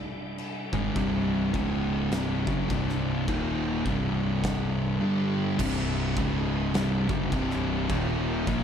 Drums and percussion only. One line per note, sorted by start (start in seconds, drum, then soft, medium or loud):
0.38 crash medium
0.73 kick loud
0.96 kick loud
0.96 crash medium
1.54 kick loud
1.54 crash medium
2.12 snare loud
2.12 crash medium
2.47 kick loud
2.70 kick loud
2.70 crash medium
2.89 snare soft
3.28 kick loud
3.28 crash medium
3.86 kick loud
3.86 crash medium
4.44 kick loud
4.44 snare loud
4.44 crash medium
5.59 kick loud
5.59 crash loud
5.59 crash medium
6.17 kick loud
6.17 crash medium
6.74 snare loud
6.74 crash medium
7.09 kick loud
7.32 kick loud
7.32 crash medium
7.51 snare soft
7.89 kick loud
7.89 crash medium
8.47 kick loud
8.47 crash medium